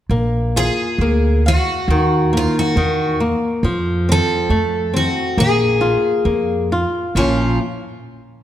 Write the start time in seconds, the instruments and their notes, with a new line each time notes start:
0.09 upright bass A#1, nylon-string guitar A#3
0.56 nylon-string guitar F4, twelve-string acoustic guitar G#4
0.98 upright bass D2, nylon-string guitar A#3
1.46 twelve-string acoustic guitar F#4, nylon-string guitar F5
1.88 upright bass D#2, nylon-string guitar D#3
2.33 nylon-string guitar A#3
2.37 twelve-string acoustic guitar F4
2.59 twelve-string acoustic guitar F#4
2.76 upright bass E2, nylon-string guitar D#3
3.20 nylon-string guitar A#3
3.63 upright bass F2, nylon-string guitar F3
4.09 nylon-string guitar C4, twelve-string acoustic guitar A4
4.49 upright bass F2, nylon-string guitar A3
4.94 nylon-string guitar C4, twelve-string acoustic guitar F#4
5.38 upright bass A#1, nylon-string guitar A#3, twelve-string acoustic guitar G#4
5.81 nylon-string guitar F4
6.25 upright bass F2, nylon-string guitar A#3
6.72 nylon-string guitar F4
7.15 upright bass A#1, nylon-string guitar A#2 F3 A#3 C#4, twelve-string acoustic guitar F4